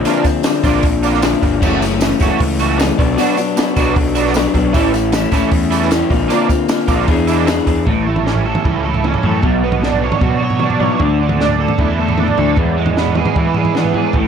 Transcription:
0.04 A#2 D3 F3 A#3 C4 D4 F4, open hi-hat, tambourine
0.24 F3 C4 D4, muted overdriven electric guitar stroke, kick, open hi-hat, tambourine
0.43 D3 F3 C4 D4, muted overdriven electric guitar stroke, snare, open hi-hat, tambourine
0.63 A#1 D3 F3 A#3 C4 D4 F4, kick, open hi-hat, tambourine
0.83 A#1, muted overdriven electric guitar stroke, kick, open hi-hat, tambourine
1.03 D3 A#3 D4 F4, open hi-hat, tambourine
1.14 snare
1.21 A#2 D3 F3 C4 D4, muted overdriven electric guitar stroke, snare, open hi-hat, tambourine
1.41 G1 F3 C4 D4, muted overdriven electric guitar stroke, kick, open hi-hat, tambourine
1.60 F#1 F#2 C#3 E3 F#3 A3 C#4 F#4, kick, crash, tambourine
1.80 E3 A3 C#4, muted overdriven electric guitar stroke, open hi-hat, tambourine
1.99 C#3 E3 A3 C#4, muted overdriven electric guitar stroke, snare, open hi-hat, tambourine
2.19 F#1 E3 F#3 A3 C#4 F#4, kick, open hi-hat, tambourine
2.38 C#2, muted overdriven electric guitar stroke, kick, open hi-hat, tambourine
2.59 F#3 A3 C#4 F#4, open hi-hat, tambourine
2.77 F#2 C#3 E3 A3 C#4, muted overdriven electric guitar stroke, open hi-hat, tambourine
2.81 snare
2.97 B1 B2 F#3 B3 D4, muted overdriven electric guitar stroke, kick, open hi-hat, tambourine
3.17 B2 F#3 B3 D4 F#4, open hi-hat, tambourine
3.37 F#3 B3 D4, muted overdriven electric guitar stroke, open hi-hat, tambourine
3.57 B2 F#3 B3 D4, muted overdriven electric guitar stroke, snare, open hi-hat, tambourine
3.76 B1 F#3 B3 D4 F#4, kick, open hi-hat, tambourine
3.96 B1, muted overdriven electric guitar stroke, kick, open hi-hat, tambourine
4.15 F#3 B3 D4 F#4, open hi-hat, tambourine
4.27 snare
4.34 B2 F#3 B3 D4, muted overdriven electric guitar stroke, snare, open hi-hat, tambourine
4.54 B1 F#3 B3 D4, muted overdriven electric guitar stroke, kick, open hi-hat, tambourine
4.73 A1 A2 E3 A3 C#4 E4, kick, open hi-hat, tambourine
4.92 C#4 E4, muted overdriven electric guitar stroke, open hi-hat, tambourine
4.96 A3
5.12 E3 A3 C#4 E4, muted overdriven electric guitar stroke, snare, open hi-hat, tambourine
5.31 A1 E3 A3 C#4 E4, kick, open hi-hat, tambourine
5.51 E2, muted overdriven electric guitar stroke, kick, open hi-hat, tambourine
5.71 E3 A3 C#4 E4, open hi-hat, tambourine
5.82 snare
5.90 A2 E3 A3 C#4 E4, muted overdriven electric guitar stroke, snare, open hi-hat, tambourine
6.10 A#1 A#2 D3 A#3 C4 F4, muted overdriven electric guitar stroke, kick, open hi-hat, tambourine
6.28 A#2 D3 A#3 C4 D4 F4, open hi-hat, tambourine
6.49 A#3 C4 F4, muted overdriven electric guitar stroke, kick, open hi-hat, tambourine
6.68 D3 A#3 C4 F4, muted overdriven electric guitar stroke, snare, open hi-hat, tambourine
6.88 A#1 D3 A#3 C4 D4 F4, kick, open hi-hat, tambourine
7.07 E2 E3 B3 D4 G#4, muted overdriven electric guitar stroke, kick, open hi-hat, tambourine
7.27 E3 G#3 D4 E4, open hi-hat, tambourine
7.46 E3 B3 D4 G#4, muted overdriven electric guitar stroke, snare, open hi-hat, tambourine
7.66 E2 B3 D4 G#4, muted overdriven electric guitar stroke, kick, open hi-hat, tambourine
7.86 A1 A2 E3 A3, kick, floor tom
8.06 A2 E3 A3
8.16 floor tom, mid tom
8.26 A2 E3 C#4, snare
8.35 floor tom
8.45 A2 E3 A4
8.55 floor tom, mid tom
8.64 C#2 A2 E3 E4, kick, floor tom
8.84 A2 E3 A4
8.94 floor tom
9.04 A2 E3 C#4, mid tom
9.14 floor tom
9.23 F#2 A2 E3 A3 A4, floor tom
9.42 B1 B2 F#3 B3, kick, floor tom
9.63 B2 F#3 B3
9.72 floor tom, mid tom
9.82 B2 F#3 D4, snare
9.92 floor tom
10.02 B2 F#3 C#5
10.12 floor tom, mid tom
10.21 B2 F#3 F#4, kick, floor tom
10.40 B2 F#3 C#5
10.50 floor tom
10.60 B2 F#3 D4, mid tom
10.70 floor tom
10.79 B2 F#3 B3 C#5, floor tom
10.99 D2 D3 A3 D4, kick, floor tom
11.19 D3 A3
11.29 floor tom, mid tom
11.39 D3 A3 D4, snare
11.49 floor tom
11.60 D3 A3 A4
11.68 floor tom, mid tom
11.78 E2 D3 A3 E4, kick, floor tom
11.99 D3 A3 A4
12.09 floor tom
12.18 D3 A3 D4, mid tom
12.28 floor tom
12.37 D2 D3 A3 D4 A4, floor tom
12.56 E2 E3 G#3 B3, kick, floor tom
12.77 E3 G#3
12.86 floor tom, mid tom
12.96 E3 G#3 B3, snare
13.06 floor tom
13.15 E3 G#3 G#4, mid tom
13.26 floor tom, mid tom
13.35 E3 G#3 E4, kick, floor tom
13.54 E3 G#3 G#4, floor tom
13.65 floor tom
13.75 E3 G#3 B3, snare, mid tom
13.84 floor tom
13.94 E3 G#3 B3 G#4, floor tom
14.13 A1 A2 E3 A3, kick, floor tom

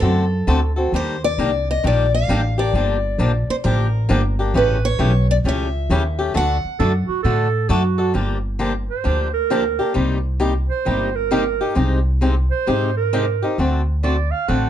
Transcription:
0.00 F#2 D3 A3 C4 F#4 A4
0.47 D2 D3 A3 C4 F#4 A4
0.76 C4 F#4 A4
0.92 D#2 D#3 G3 A#3 D4 G4 C5
1.24 D5
1.38 C2 D#3 G3 A#3 D4 G4
1.71 D#5
1.83 A#1 D#3 G3 A#3 D4 G4 D5
2.14 F5
2.28 A1 D#3 G3 A#3 D4 G4
2.58 A#3 D4 G4 D5
2.73 G1 D3 F3 A#3 D4 G4
3.18 A#1 D3 F3 A#3 D4 G4
3.48 C5, muted upright bass stroke
3.64 A1 D3 F3 A#3 D4 G4 A#4
4.09 G1 D3 F3 A#3 D4 G4
4.39 A#3 D4 G4
4.54 A1 C#3 E3 A3 C#4 G4 B4
4.85 C#5
4.99 B1 C#3 E3 A3 C#4 G4
5.31 D5
5.44 C#2 C#3 E3 A3 C#4 G4
5.48 E5
5.90 D#2 C#3 E3 A3 C#4 G4
6.19 A3 C#4 G4
6.34 D2 D3 A3 D4 F#4 A4 F#5
6.64 muted upright bass stroke
6.79 F#2 D3 A3 D4 F#4 A4
7.08 F#4, muted upright bass stroke
7.23 A2 D3 A3 D4 F#4 A4
7.69 F#2 D3 A3 D4 F#4 A4
7.98 D4 F#4 A4
8.14 G1 D3 F3 A#3 D4 G4
8.59 D3 F3 A#3 D4 G4
8.90 C5
9.04 D2 D3 F3 A#3 D4 G4
9.34 A#4
9.50 D3 F3 A#3 D4 G4
9.79 A#3 D4 G4
9.94 C2 C3 G3 A#3 D#4 G4
10.40 C3 G3 A#3 D#4 G4
10.69 C5
10.85 G1 C3 G3 A#3 D#4 G4
11.16 A#4
11.31 C3 G3 A#3 D#4 G4
11.61 A#3 D#4 G4
11.75 C2 C3 G#3 C4 D#4 G4
12.21 C3 G#3 C4 D#4 G4
12.51 C5
12.67 G#2 C3 G#3 C4 D#4 G4
12.97 A#4
13.13 C3 G#3 C4 D#4 G4
13.42 C4 D#4 G4
13.58 D2 D3 A3 C4 F#4 A4
14.03 D3 A3 C4 F#4 A4 D5
14.32 F5
14.48 A1 D3 A3 C4 F#4 A4 F#5

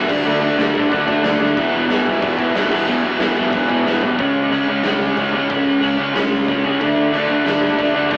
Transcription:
0.09 D2 D3 A3 D4 F#4, kick, crash
0.24 D2 D3 A3 D4, crash
0.42 D3 A3 D4
0.58 D2 D3 A3 D4 F#4, snare, crash
0.75 A2 D3 A3 D4, kick
0.92 D2 D3 A3 D4, kick, crash
1.07 D2 D3 A3 D4 F#4, kick
1.22 D2 A3 D4, snare, crash
1.26 D3
1.39 D2 D3 A3 D4
1.56 E1 E2 B2 E3 G#3 B3 E4, kick, crash
1.74 E2 B2 E3
1.89 E1 E2 B2 E3, snare, crash
2.06 B1 E2 B2 E3 G#3 B3 E4, kick
2.22 E1 E2 B2 E3, kick, crash
2.38 E1 E2 B2 E3, kick
2.54 E1 E2 B2 E3 G#3 B3 E4, snare, crash
2.70 E1 E2 B2 E3 G#3 B3 E4, kick, crash
2.86 E1 E2 B2 E3, crash
3.03 E2 B2 E3
3.19 E1 E2 B2 E3 G#3 B3 E4, snare, crash
3.36 B1 E2 B2 E3, kick
3.52 E1 E2 B2 E3, kick, crash
3.69 E1 E2 B2 E3 G#3 B3 E4, kick
3.86 E1 E2 B2 E3, snare
4.01 B1 E2 B2 E3, floor tom
4.18 C#2 C#3 G#3 C#4, kick, crash
4.35 C#2
4.50 C#2 C#3 G#3 C#4, crash
4.68 C#2 C#3 G#3 C#4
4.83 C#2 C#3 G#3 C#4, snare, crash
5.17 C#2 C#3 G#3 C#4, kick, crash
5.32 C#2 C#3 G#3 C#4
5.49 C#2 C#3 G#3 C#4, kick, crash
5.80 C#2 C#3 G#3 C#4, crash
5.98 C#2 C#3 G#3 C#4
6.13 C#2 C#3 G#3 C#4, snare, crash
6.33 C#2
6.48 C#2 C#3 G#3 C#4, kick, crash
6.64 C#3 G#3 C#4
6.80 D2 D3 A3 D4, kick, crash
6.97 D2
7.12 D2 D3 A3 D4, crash
7.28 D2 D3 A3 D4
7.44 D2 D3 A3 D4, snare, crash
7.78 D2 D3 A3 D4, kick, crash
7.95 D2 D3 A3 D4
8.11 D2 D3 A3 D4, kick, crash

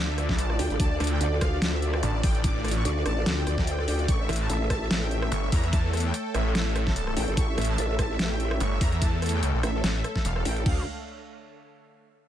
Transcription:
Already playing: D2 D3 D4 F4 A4
0.09 E5
0.18 D5, cross-stick, closed hi-hat
0.29 D5, kick, snare
0.38 A5, closed hi-hat
0.50 D5, cross-stick
0.59 D2 G5, open hi-hat
0.70 A1 D5, closed hi-hat
0.80 D2 A5, kick, closed hi-hat
0.91 D5
1.00 D2 D5, cross-stick, closed hi-hat
1.04 closed hi-hat
1.07 closed hi-hat
1.11 G5
1.21 D2 D5, closed hi-hat
1.32 D5
1.41 F5, kick, cross-stick, closed hi-hat
1.52 D5
1.62 D2 D5, snare, closed hi-hat
1.73 E5
1.82 D5, closed hi-hat
1.94 D5, cross-stick
2.03 A1 A5, closed hi-hat
2.14 D5
2.23 A1 G5, kick, open hi-hat
2.35 D5, closed hi-hat
2.44 D6, kick, closed hi-hat
2.55 D5
2.64 D5, cross-stick, closed hi-hat
2.68 closed hi-hat
2.71 closed hi-hat
2.76 C#6
2.85 D2 D5, closed hi-hat
2.96 D5
3.05 A1 A5, cross-stick, closed hi-hat
3.17 D5
3.26 D2 D5, snare, closed hi-hat
3.37 G5
3.47 D2 D5, cross-stick, closed hi-hat
3.58 D5, kick, snare
3.67 G5, closed hi-hat
3.78 D5, cross-stick
3.88 D2 G5, open hi-hat
3.99 D5, closed hi-hat
4.08 A1 A3 A4 C#5 E5 C#6, kick, closed hi-hat
4.20 E5
4.29 A1 E5, cross-stick, closed hi-hat
4.33 closed hi-hat
4.36 closed hi-hat
4.40 A5
4.50 A1 E5, closed hi-hat
4.61 E5
4.70 A5, kick, cross-stick, closed hi-hat
4.81 E5
4.91 A1 E5, snare, closed hi-hat
5.02 G5
5.11 E5, closed hi-hat
5.22 E5, cross-stick
5.32 G1 C#6, closed hi-hat
5.43 E5
5.52 E2 A#5, kick, open hi-hat
5.63 E5, closed hi-hat
5.73 A5, kick, closed hi-hat
5.84 A4
5.93 A4, cross-stick, closed hi-hat
5.97 closed hi-hat
6.00 closed hi-hat
6.05 G5
6.14 A4, closed hi-hat
6.25 A4
6.34 A1 E5, cross-stick, closed hi-hat
6.46 A4
6.55 A4, snare, closed hi-hat
6.66 E5
6.76 A4, cross-stick, closed hi-hat
6.87 A4, kick, snare
6.96 A5, closed hi-hat
7.07 A4, cross-stick
7.17 A1 G5, open hi-hat
7.28 G1 A4, closed hi-hat
7.37 A1 C#6, kick, closed hi-hat
7.48 E5
7.58 A1 E5, cross-stick, closed hi-hat
7.61 closed hi-hat
7.65 closed hi-hat
7.69 A5
7.78 A1 E5, closed hi-hat
7.90 E5
7.99 A5, kick, cross-stick, closed hi-hat
8.10 E5
8.19 A1 E5, snare, closed hi-hat
8.31 G5
8.40 E5, closed hi-hat
8.51 E5, cross-stick
8.60 G1 C#6, closed hi-hat
8.72 E5
8.81 E2 A#5, kick, open hi-hat
8.92 E5, closed hi-hat
9.02 A5, kick, closed hi-hat
9.13 A4
9.22 A4, cross-stick, closed hi-hat
9.26 closed hi-hat
9.29 closed hi-hat
9.34 G5
9.43 C#2 A4, closed hi-hat
9.54 A#1 A4
9.63 A1 E5, cross-stick, closed hi-hat
9.75 A4
9.84 A1 A4, snare, closed hi-hat
9.95 E5
10.04 A4, cross-stick, closed hi-hat
10.16 A4, kick, snare
10.25 E1 F5, closed hi-hat
10.36 A4, cross-stick
10.45 A1 G5, open hi-hat
10.57 A4, closed hi-hat
10.66 D2 D3 D4 A4 F5, kick, floor tom, crash

